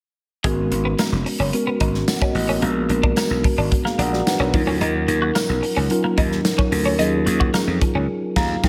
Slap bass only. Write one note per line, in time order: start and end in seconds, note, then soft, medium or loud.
0.44 0.66 G#1 medium
0.71 0.93 G#1 medium
1.12 1.23 F1 medium
1.39 1.50 F#1 medium
1.81 2.03 G#1 medium
2.35 2.57 A1 medium
2.62 2.84 A#1 loud
2.89 3.11 A#1 medium
3.30 3.42 B1 medium
3.58 3.69 G#1 medium
3.98 4.21 A#1 medium
4.39 4.51 B1 medium
4.54 4.65 D#2 medium
4.67 4.78 D2 medium
4.81 5.03 D#2 loud
5.08 5.30 D#2 loud
5.49 5.60 B1 medium
5.77 5.88 C#2 medium
6.18 6.40 D#2 medium
6.72 6.94 D2 medium
6.99 7.21 D#2 loud
7.27 7.49 D#2 medium
7.67 7.79 F2 medium
7.95 8.06 C#2 medium
8.36 8.55 D#2 medium
8.63 8.69 D#2 loud